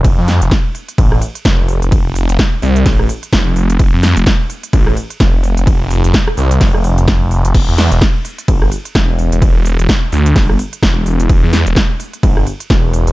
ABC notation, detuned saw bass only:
X:1
M:4/4
L:1/16
Q:"Swing 16ths" 1/4=128
K:Flyd
V:1 name="Detuned saw bass" clef=bass
F,,, F,,2 F,,, z4 A,,,2 z2 F,,,3 F,,,- | F,,,3 F,,, z2 C,,2 A,,,2 z2 F,,,2 F,,,2 | F,,, F,,2 F,,, z4 A,,,2 z2 F,,,3 F,,,- | F,,,3 F,,, z2 C,,2 F,,,4 F,,,3 F,,, |
E,,, E,,2 E,,, z4 G,,,2 z2 E,,,3 E,,,- | E,,,3 E,,, z2 D,,2 G,,,2 z2 E,,,2 E,,,2 | E,,, E,,2 E,,, z4 G,,,2 z2 E,,,3 E,,, |]